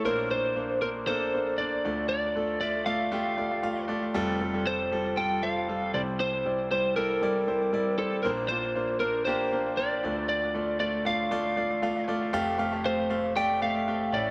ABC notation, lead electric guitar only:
X:1
M:4/4
L:1/8
Q:1/4=117
K:Dm
V:1 name="Lead electric guitar"
B c2 B c2 d2 | d2 d f4 z | z2 c2 g f2 d | c2 c B4 A |
B c2 B c2 d2 | d2 d f4 z | z2 c2 g f2 d |]